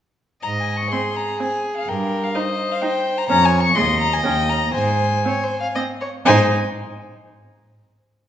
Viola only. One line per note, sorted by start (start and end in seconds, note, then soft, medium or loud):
0.93 1.01 C4 soft
1.40 1.48 C4 soft
2.35 2.43 D#4 soft
2.82 2.90 D#4 soft
3.30 3.38 C#4 medium
3.76 3.84 G#3 medium
4.24 4.32 C#4 soft
5.25 5.33 C4 soft
5.76 5.84 C4 soft
6.26 6.53 D#4 medium